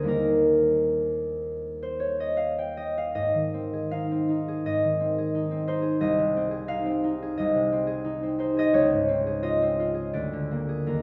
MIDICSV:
0, 0, Header, 1, 2, 480
1, 0, Start_track
1, 0, Key_signature, -4, "major"
1, 0, Tempo, 790514
1, 11, Time_signature, 4, 2, 24, 8
1, 971, Tempo, 766284
1, 2411, Tempo, 731707
1, 2891, Tempo, 683371
1, 5291, Tempo, 701754
1, 7326, End_track
2, 0, Start_track
2, 0, Title_t, "Harp"
2, 0, Program_c, 0, 46
2, 0, Note_on_c, 0, 72, 77
2, 18, Note_on_c, 0, 39, 50
2, 25, Note_on_c, 0, 55, 39
2, 30, Note_on_c, 0, 58, 39
2, 44, Note_on_c, 0, 63, 40
2, 50, Note_on_c, 0, 70, 73
2, 360, Note_off_c, 0, 72, 0
2, 1113, Note_on_c, 0, 72, 57
2, 1221, Note_on_c, 0, 73, 59
2, 1303, Note_off_c, 0, 72, 0
2, 1349, Note_on_c, 0, 75, 64
2, 1416, Note_off_c, 0, 73, 0
2, 1453, Note_on_c, 0, 77, 64
2, 1541, Note_off_c, 0, 75, 0
2, 1589, Note_on_c, 0, 79, 58
2, 1656, Note_off_c, 0, 77, 0
2, 1706, Note_on_c, 0, 75, 62
2, 1787, Note_off_c, 0, 79, 0
2, 1834, Note_on_c, 0, 77, 66
2, 1906, Note_off_c, 0, 75, 0
2, 1942, Note_on_c, 0, 44, 50
2, 1943, Note_on_c, 0, 75, 71
2, 1956, Note_off_c, 0, 39, 0
2, 1960, Note_off_c, 0, 55, 0
2, 1962, Note_off_c, 0, 58, 0
2, 1973, Note_off_c, 0, 70, 0
2, 2028, Note_off_c, 0, 77, 0
2, 2063, Note_on_c, 0, 51, 36
2, 2186, Note_on_c, 0, 60, 37
2, 2308, Note_on_c, 0, 68, 41
2, 2420, Note_off_c, 0, 63, 0
2, 2422, Note_on_c, 0, 77, 71
2, 2428, Note_on_c, 0, 63, 42
2, 2544, Note_off_c, 0, 60, 0
2, 2552, Note_on_c, 0, 60, 42
2, 2657, Note_off_c, 0, 63, 0
2, 2665, Note_on_c, 0, 63, 41
2, 2786, Note_off_c, 0, 68, 0
2, 2794, Note_on_c, 0, 68, 44
2, 2901, Note_off_c, 0, 44, 0
2, 2904, Note_off_c, 0, 75, 0
2, 2909, Note_on_c, 0, 44, 43
2, 2912, Note_on_c, 0, 75, 68
2, 3030, Note_off_c, 0, 51, 0
2, 3038, Note_on_c, 0, 51, 38
2, 3144, Note_off_c, 0, 60, 0
2, 3153, Note_on_c, 0, 60, 40
2, 3240, Note_off_c, 0, 77, 0
2, 3272, Note_off_c, 0, 68, 0
2, 3280, Note_on_c, 0, 68, 46
2, 3388, Note_off_c, 0, 63, 0
2, 3396, Note_on_c, 0, 63, 45
2, 3501, Note_off_c, 0, 60, 0
2, 3509, Note_on_c, 0, 60, 43
2, 3618, Note_off_c, 0, 63, 0
2, 3624, Note_on_c, 0, 63, 44
2, 3628, Note_on_c, 0, 72, 68
2, 3719, Note_off_c, 0, 68, 0
2, 3728, Note_on_c, 0, 68, 50
2, 3849, Note_off_c, 0, 75, 0
2, 3856, Note_on_c, 0, 36, 54
2, 3860, Note_on_c, 0, 75, 76
2, 3880, Note_off_c, 0, 44, 0
2, 3882, Note_off_c, 0, 51, 0
2, 3984, Note_on_c, 0, 48, 46
2, 4101, Note_off_c, 0, 60, 0
2, 4110, Note_on_c, 0, 60, 45
2, 4204, Note_off_c, 0, 68, 0
2, 4212, Note_on_c, 0, 68, 46
2, 4320, Note_off_c, 0, 63, 0
2, 4329, Note_on_c, 0, 63, 47
2, 4333, Note_on_c, 0, 77, 81
2, 4447, Note_off_c, 0, 60, 0
2, 4455, Note_on_c, 0, 60, 51
2, 4574, Note_off_c, 0, 63, 0
2, 4583, Note_on_c, 0, 63, 48
2, 4705, Note_off_c, 0, 68, 0
2, 4714, Note_on_c, 0, 68, 52
2, 4812, Note_off_c, 0, 75, 0
2, 4820, Note_on_c, 0, 75, 76
2, 4822, Note_off_c, 0, 36, 0
2, 4831, Note_on_c, 0, 36, 52
2, 4934, Note_off_c, 0, 48, 0
2, 4943, Note_on_c, 0, 48, 45
2, 5056, Note_off_c, 0, 60, 0
2, 5064, Note_on_c, 0, 60, 49
2, 5148, Note_off_c, 0, 77, 0
2, 5158, Note_off_c, 0, 68, 0
2, 5167, Note_on_c, 0, 68, 53
2, 5282, Note_off_c, 0, 63, 0
2, 5291, Note_on_c, 0, 63, 51
2, 5408, Note_off_c, 0, 60, 0
2, 5416, Note_on_c, 0, 60, 49
2, 5516, Note_off_c, 0, 63, 0
2, 5522, Note_off_c, 0, 72, 0
2, 5524, Note_on_c, 0, 63, 51
2, 5530, Note_on_c, 0, 72, 75
2, 5641, Note_off_c, 0, 68, 0
2, 5649, Note_on_c, 0, 68, 57
2, 5653, Note_off_c, 0, 75, 0
2, 5661, Note_on_c, 0, 75, 84
2, 5763, Note_on_c, 0, 37, 61
2, 5764, Note_on_c, 0, 73, 79
2, 5783, Note_off_c, 0, 63, 0
2, 5792, Note_off_c, 0, 48, 0
2, 5796, Note_off_c, 0, 36, 0
2, 5856, Note_off_c, 0, 75, 0
2, 5896, Note_on_c, 0, 44, 47
2, 5993, Note_off_c, 0, 60, 0
2, 6001, Note_on_c, 0, 60, 49
2, 6118, Note_off_c, 0, 68, 0
2, 6126, Note_on_c, 0, 68, 51
2, 6233, Note_on_c, 0, 65, 49
2, 6237, Note_on_c, 0, 75, 80
2, 6357, Note_off_c, 0, 60, 0
2, 6366, Note_on_c, 0, 60, 47
2, 6479, Note_off_c, 0, 65, 0
2, 6487, Note_on_c, 0, 65, 46
2, 6582, Note_off_c, 0, 68, 0
2, 6590, Note_on_c, 0, 68, 46
2, 6718, Note_on_c, 0, 38, 52
2, 6720, Note_on_c, 0, 74, 69
2, 6732, Note_off_c, 0, 73, 0
2, 6733, Note_off_c, 0, 37, 0
2, 6734, Note_off_c, 0, 72, 0
2, 6738, Note_off_c, 0, 60, 0
2, 6739, Note_off_c, 0, 44, 0
2, 6851, Note_on_c, 0, 50, 39
2, 6976, Note_on_c, 0, 58, 40
2, 7056, Note_off_c, 0, 75, 0
2, 7089, Note_off_c, 0, 68, 0
2, 7097, Note_on_c, 0, 68, 45
2, 7219, Note_on_c, 0, 39, 47
2, 7222, Note_on_c, 0, 70, 61
2, 7228, Note_off_c, 0, 38, 0
2, 7228, Note_off_c, 0, 74, 0
2, 7232, Note_off_c, 0, 65, 0
2, 7233, Note_off_c, 0, 50, 0
2, 7233, Note_off_c, 0, 68, 0
2, 7326, Note_off_c, 0, 39, 0
2, 7326, Note_off_c, 0, 58, 0
2, 7326, Note_off_c, 0, 70, 0
2, 7326, End_track
0, 0, End_of_file